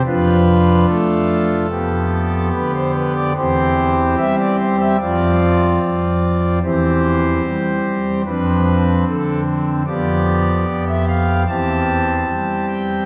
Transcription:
<<
  \new Staff \with { instrumentName = "Pipe organ" } { \time 4/4 \key c \major \tempo 4 = 74 << { b'4 a'2 b'16 c''16 b'16 d''16 | c''4 e''16 d''16 c''16 e''16 d''2 | c''2 b'4 a'8 r8 | d''4~ d''16 e''16 f''8 a''4. g''8 | } \\ { <d' f'>2 <b g'>2 | <c' g'>2 <c' f'>2 | <c' g'>2 <c' d'>2 | <b g'>2 <c' g'>2 | } >> }
  \new Staff \with { instrumentName = "Pipe organ" } { \clef bass \time 4/4 \key c \major <f, f>4 a4 <f, f>4 d4 | <e, e>4 g4 <f, f>4 f,4 | <e, e>4 g4 <f, f>4 d4 | <f, f>4 f,4 <e, e>4 g4 | }
>>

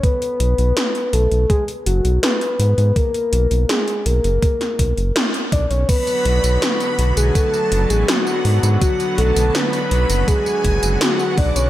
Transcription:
<<
  \new Staff \with { instrumentName = "String machine" } { \time 4/4 \key b \dorian \tempo 4 = 82 r1 | r1 | b''4 b''8. gis''16 a''8. gis''16 fis''8. r16 | fis''8 a''8 b''8 b''8 gis''4 fis''8 d'''16 cis'''16 | }
  \new Staff \with { instrumentName = "Soft synth lead" } { \time 4/4 \key b \dorian b'4. a'8 gis'8 fis'8 b'4 | ais'4 gis'8 ais'4. r8 d''16 cis''16 | b'4 b'8. gis'16 a'8. gis'16 fis'8. r16 | fis'8 a'8 b'8 b'8 gis'4 fis'8 d''16 cis''16 | }
  \new Staff \with { instrumentName = "Analog synth pad" } { \clef bass \time 4/4 \key b \dorian r1 | r1 | <d fis b fis'>1~ | <d fis b fis'>1 | }
  \new Staff \with { instrumentName = "Analog synth bass" } { \clef bass \time 4/4 \key b \dorian r8 b,,16 b,,16 r8 b,,16 b,,16 r8 fis,,16 b,,16 r8 gis,16 gis,16 | r8 b,,16 b,,16 r8 b,,16 fis,,16 r8 b,,16 fis,,16 r8 b,,16 b,,16 | r8 b,,16 b,,16 r8 b,,16 b,,16 r8 fis,,16 a,,16 r8 gis,16 gis,16 | r8 b,,16 b,,16 r8 b,,16 fis,,16 r8 fis,,16 fis,,16 r8 b,,16 b,,16 | }
  \new DrumStaff \with { instrumentName = "Drums" } \drummode { \time 4/4 <hh bd>16 hh16 hh16 hh16 <hh sn>16 hh16 hh16 hh16 <hh bd>16 hh16 hh16 hh16 <hh sn>16 hh16 hh16 hh16 | <hh bd>16 hh16 hh16 hh16 <hh sn>16 hh16 hh16 hh16 <hh bd>16 <hh sn>16 <hh bd>16 hh16 <hh sn>16 hh16 <hh bd>16 hh16 | <cymc hh bd tamb>16 <hh tamb>16 hh16 <hh tamb>16 <hh sn tamb>16 <hh tamb>16 hh16 <hh tamb>16 <hh bd tamb>16 tamb16 hh16 <hh tamb>16 <hh sn tamb>16 tamb16 hho16 <hh tamb>16 | <hh bd tamb>16 <hh tamb>16 hh16 <hh tamb>16 <hh sn tamb>16 <hh tamb>16 hh16 <hh tamb>16 <hh bd tamb>16 tamb16 <hh bd>16 <hh tamb>16 <hh sn tamb>16 tamb16 <hho bd>16 <hh tamb>16 | }
>>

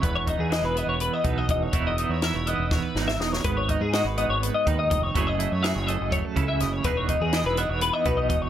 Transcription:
<<
  \new Staff \with { instrumentName = "Clean electric guitar" } { \time 7/8 \key cis \minor \tempo 4 = 123 b'16 cis''16 dis''16 gis'16 dis''16 b'16 dis''16 cis''16 b'16 dis''16 b'16 dis''16 dis''16 cis''16~ | cis''16 dis''8 cis''16 e''16 cis''16 dis''8 cis''16 b'8 e''16 dis''16 cis''16 | b'16 cis''16 dis''16 gis'16 dis''16 b'16 dis''16 cis''16 b'16 dis''16 b'16 dis''16 dis''16 cis''16~ | cis''16 dis''8 cis''16 e''16 cis''16 dis''8 cis''16 a'8 e''16 dis''16 cis''16 |
b'16 cis''16 dis''16 gis'16 dis''16 b'16 dis''16 cis''16 b'16 dis''16 b'16 dis''16 dis''16 cis''16 | }
  \new Staff \with { instrumentName = "Clean electric guitar" } { \time 7/8 \key cis \minor << { b8 dis'8 gis'8 b4 dis'4 | <e b dis' e'>8 dis'8 e'8 b4 dis'4 | b8 dis'8 fis'8 b4 dis'4 | <fis a e' gis'>8 e'8 gis'8 a4 e'4 |
<e b dis' gis'>8 dis'8 gis'8 b4 dis'4 | } \\ { e,4 e4. b,4 | e,4 e4. e,4 | gis,4 gis4. dis4 | fis,4 fis4. cis4 |
e,4 e4. b,4 | } >> }
  \new Staff \with { instrumentName = "Fingered electric bass" } { \clef bass \time 7/8 \key cis \minor e,,8. e,8 e,,8 e,,8 r16 b,,8 e,,8 | e,,8. e,8 e,,8 e,,8 r16 gis,,8 e,,8 | gis,,8. gis,8 gis,,8 gis,,8 r16 dis,8 f,,8 | fis,,8. fis,8 fis,,8 fis,,8 r16 cis,8 fis,,8 |
e,,8. e,8 e,,8 e,,8 r16 b,,8 e,,8 | }
  \new DrumStaff \with { instrumentName = "Drums" } \drummode { \time 7/8 <hh bd>8 <hh bd>8 <hh sn>8 hh8 hh8 <hh bd>8 <hh bd>8 | <hh bd>8 hh8 <hh sn>8 hh8 <bd sn>8 sn16 sn16 sn16 sn16 | <hh bd>8 <hh bd>8 <hh sn>8 hh8 hh8 <hh bd>8 <hh bd>8 | <hh bd>8 hh8 <hh sn>8 hh8 <hh bd>8 <hh bd>8 <hh sn>8 |
<hh bd>8 <hh bd>8 <hh sn>8 hh8 hh8 <hh bd>8 <hh bd>8 | }
>>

